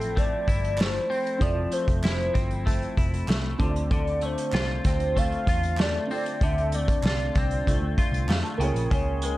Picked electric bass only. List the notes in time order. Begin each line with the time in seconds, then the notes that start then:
Already playing: A1
0.48 G1
1.41 F1
1.88 F1
2.04 F1
2.35 G1
2.97 F1
3.28 C2
3.59 D2
4.53 C2
4.85 D2
5.47 E2
6.41 D2
7.03 C2
7.35 C2
7.67 C2
7.81 D2
8.12 C2
8.29 F2
8.59 C#2
8.74 A#1
8.91 C#2